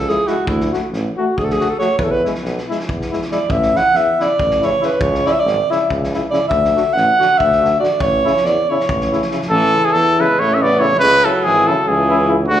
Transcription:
Already playing: C#2 A4
0.09 G#3 E4 G#4, snare
0.27 G#3 E4 F#4, snare
0.46 D2 E4, kick
0.60 snare
0.72 A3 F#4, snare
0.92 A1, snare
1.17 A3 F#4
1.37 D2 G#4, kick
1.44 A4
1.50 G#4, snare
1.60 A3 F#4, snare
1.70 A4
1.79 A3 F#4 C#5, snare
1.98 E2 B4, kick
2.03 A4
2.11 B4
2.23 G#3 E4, snare
2.35 snare
2.43 B1, snare
2.58 snare
2.68 G#3 E4, snare
2.80 snare
2.88 E2, kick
3.01 snare
3.11 G#3 E4, snare
3.22 snare
3.31 G#3 E4 D5, snare
3.48 A1 E5, kick
3.62 snare
3.73 C#3 E4, snare
3.77 F#5
3.93 E2 E5, snare
4.19 C#3 E4 D5, snare
4.39 A1, kick
4.51 snare
4.61 C#3 E4 C#5, snare
4.80 C#3 E4, snare
4.85 B4
4.99 C#2 C#5, kick
5.15 snare
5.25 C#3 E4 D5, snare
5.32 E5
5.39 D5
5.45 G#1, snare
5.70 C#3 E4 E5, snare
5.89 C#2, kick
6.04 snare
6.13 C#3 E4, snare
6.30 C#3 E4 D5, snare
6.48 D2 E5, kick
6.64 snare
6.75 D3 F#4, snare
6.93 A1 F#5, snare
7.19 D3 F#4, snare
7.38 D2 E5, kick
7.52 snare
7.61 D3 F#4
7.65 snare
7.79 D3 F#4 D5
7.84 snare
8.00 A1 C#5, kick
8.24 C#3 E4, snare
8.37 snare
8.43 E2 D5, snare
8.69 C#3 E4 C#5
8.80 snare
8.88 A1, kick
9.01 snare
9.11 C#3 E4, snare
9.22 snare
9.30 C#3 E4, snare
9.42 snare
9.49 A1 E3 A4
9.73 C#3 E4
9.85 E3 G#4
9.93 E2 E3 A4
10.19 C#3 G#3 E4 B4
10.38 A1 A3 C#5
10.54 C#4 E5
10.60 C#3 B3 E4 D5
10.79 C#3 E4 C#5
10.84 A3
10.99 C#2 G#3 B4
11.23 C#3 F#3 E4 A4
11.43 G#1 E3 G#4
11.67 C#3 F#3 E4 A4
11.87 C#2 E3 G#4
12.09 C#3 E4
12.28 C#3 E4
12.48 D2 D3 F#4

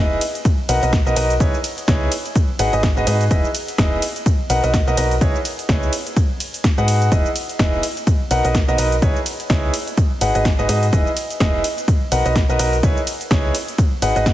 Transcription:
Already playing: E1 D#4 E4 G#4 B4 D#5
0.21 open hi-hat, ride, shaker
0.35 closed hi-hat, shaker
0.45 kick, closed hi-hat, shaker
0.69 B1 D#4 F#4 A#4 B4 F#5, open hi-hat, ride, shaker
0.83 B1 D#4 F#4 A#4 B4 D#5, closed hi-hat, shaker
0.93 kick, snare, closed hi-hat, shaker
1.06 B1 D#4 F#4 A#4 B4 D#5, shaker
1.16 B1 D#4 F#4 A#4 B4 D#5, open hi-hat, ride, shaker
1.30 closed hi-hat, shaker
1.40 C#2 D#4 E4 G#4 B4 C#5, kick, closed hi-hat, shaker
1.54 shaker
1.64 open hi-hat, ride, shaker
1.78 closed hi-hat, shaker
1.88 C#2 D#4 E4 G#4 B4 C#5, kick, snare, closed hi-hat, shaker
2.12 open hi-hat, ride, shaker
2.25 closed hi-hat, shaker
2.36 kick, closed hi-hat, shaker
2.59 G#1 D#4 F#4 G#4 B4 F#5, open hi-hat, ride, shaker
2.73 G#1 D#4 F#4 G#4 B4 D#5, closed hi-hat, shaker
2.83 kick, snare, closed hi-hat, shaker
2.97 G#1 D#4 F#4 G#4 B4 D#5, shaker
3.07 G#2 D#4 F#4 G#4 B4 D#5, open hi-hat, ride, shaker
3.21 closed hi-hat, shaker
3.31 E1 D#4 E4 G#4 B4 D#5, kick, closed hi-hat, shaker
3.45 shaker
3.55 open hi-hat, ride, shaker
3.68 closed hi-hat, shaker
3.78 E1 D#4 E4 G#4 B4 D#5, kick, snare, closed hi-hat, shaker
4.02 open hi-hat, ride, shaker
4.16 closed hi-hat, shaker
4.26 kick, closed hi-hat, shaker
4.50 B1 D#4 F#4 A#4 B4 F#5, open hi-hat, ride, shaker
4.64 B1 D#4 F#4 A#4 B4 D#5, closed hi-hat, shaker
4.74 kick, snare, closed hi-hat, shaker
4.87 B1 D#4 F#4 A#4 B4 D#5, shaker
4.97 B1 D#4 F#4 A#4 B4 D#5, open hi-hat, ride, shaker
5.11 closed hi-hat, shaker
5.21 C#2 D#4 E4 G#4 B4 C#5, kick, closed hi-hat, shaker
5.35 shaker
5.45 open hi-hat, ride, shaker
5.59 closed hi-hat, shaker
5.69 C#2 D#4 E4 G#4 B4 C#5, kick, snare, closed hi-hat, shaker
5.83 shaker
5.93 open hi-hat, ride, shaker
6.06 closed hi-hat, shaker
6.17 kick, closed hi-hat, shaker
6.40 open hi-hat, ride, shaker
6.54 closed hi-hat, shaker
6.64 kick, snare, closed hi-hat, shaker
6.78 G#2 D#4 F#4 G#4 B4 F#5, shaker
6.88 open hi-hat, ride, shaker
7.02 closed hi-hat, shaker
7.12 E1 D#4 E4 G#4 B4 D#5, kick, closed hi-hat, shaker
7.26 shaker
7.36 open hi-hat, ride, shaker
7.49 closed hi-hat, shaker
7.59 E1 D#4 E4 G#4 B4 D#5, kick, snare, closed hi-hat, shaker
7.83 open hi-hat, ride, shaker
7.97 closed hi-hat, shaker
8.07 kick, closed hi-hat, shaker
8.31 B1 D#4 F#4 A#4 B4 F#5, open hi-hat, ride, shaker
8.45 B1 D#4 F#4 A#4 B4 D#5, closed hi-hat, shaker
8.55 kick, snare, closed hi-hat, shaker
8.68 B1 D#4 F#4 A#4 B4 D#5, shaker
8.78 B1 D#4 F#4 A#4 B4 D#5, open hi-hat, ride, shaker
8.92 closed hi-hat, shaker
9.02 C#2 D#4 E4 G#4 B4 C#5, kick, closed hi-hat, shaker
9.16 shaker
9.26 open hi-hat, ride, shaker
9.40 closed hi-hat, shaker
9.50 C#2 D#4 E4 G#4 B4 C#5, kick, snare, closed hi-hat, shaker
9.74 open hi-hat, ride, shaker
9.87 closed hi-hat, shaker
9.97 kick, closed hi-hat, shaker
10.21 G#1 D#4 F#4 G#4 B4 F#5, open hi-hat, ride, shaker
10.35 G#1 D#4 F#4 G#4 B4 D#5, closed hi-hat, shaker
10.45 kick, snare, closed hi-hat, shaker
10.59 G#1 D#4 F#4 G#4 B4 D#5, shaker
10.69 G#2 D#4 F#4 G#4 B4 D#5, open hi-hat, ride, shaker
10.83 closed hi-hat, shaker
10.93 E1 D#4 E4 G#4 B4 D#5, kick, closed hi-hat, shaker
11.07 shaker
11.17 open hi-hat, ride, shaker
11.30 closed hi-hat, shaker
11.40 E1 D#4 E4 G#4 B4 D#5, kick, snare, closed hi-hat, shaker
11.64 open hi-hat, ride, shaker
11.78 closed hi-hat, shaker
11.88 kick, closed hi-hat, shaker
12.12 B1 D#4 F#4 A#4 B4 F#5, open hi-hat, ride, shaker
12.26 B1 D#4 F#4 A#4 B4 D#5, closed hi-hat, shaker
12.36 kick, snare, closed hi-hat, shaker
12.49 B1 D#4 F#4 A#4 B4 D#5, shaker
12.59 B1 D#4 F#4 A#4 B4 D#5, open hi-hat, ride, shaker
12.73 closed hi-hat, shaker
12.83 C#2 D#4 E4 G#4 B4 C#5, kick, closed hi-hat, shaker
12.97 shaker
13.07 open hi-hat, ride, shaker
13.21 closed hi-hat, shaker
13.31 C#2 D#4 E4 G#4 B4 C#5, kick, snare, closed hi-hat, shaker
13.55 open hi-hat, ride, shaker
13.68 closed hi-hat, shaker
13.78 kick, closed hi-hat, shaker
14.02 G#1 D#4 F#4 G#4 B4 F#5, open hi-hat, ride, shaker
14.16 G#1 D#4 F#4 G#4 B4 D#5, closed hi-hat, shaker
14.26 kick, snare, closed hi-hat, shaker

